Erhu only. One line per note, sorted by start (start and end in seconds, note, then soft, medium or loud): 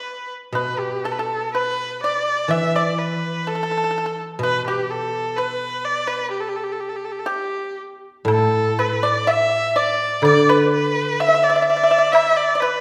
0.00 0.30 B4 medium
0.55 0.81 B4 medium
0.79 1.06 G4 medium
1.04 1.14 A4 medium
1.12 1.21 B4 soft
1.19 1.53 A4 medium
1.54 2.00 B4 medium
2.04 2.53 D5 medium
2.51 2.77 E5 medium
2.76 3.00 D5 medium
2.98 3.49 B4 medium
3.48 4.19 A4 medium
4.44 4.65 B4 medium
4.68 4.92 G4 medium
4.91 5.38 A4 medium
5.37 5.86 B4 medium
5.85 6.09 D5 medium
6.07 6.30 B4 medium
6.31 6.42 G4 medium
6.41 6.50 A4 medium
6.49 6.58 G4 medium
6.56 6.65 A4 soft
6.64 6.74 G4 soft
6.72 6.82 A4 soft
6.80 6.91 G4 soft
6.89 6.98 A4 soft
6.96 7.06 G4 soft
7.05 7.13 A4 soft
7.12 7.21 G4 soft
7.19 7.29 A4 soft
7.27 7.78 G4 medium
8.31 8.81 A4 medium
8.80 9.07 B4 medium
9.05 9.31 D5 medium
9.30 9.79 E5 medium
9.77 10.25 D5 medium
10.25 10.51 D5 medium
10.49 10.73 B4 medium
10.74 11.22 B4 medium
11.20 11.45 E5 medium
11.44 11.67 D5 medium
11.68 12.14 D5 medium
12.13 12.38 E5 loud
12.37 12.61 D5 medium
12.60 12.80 B4 medium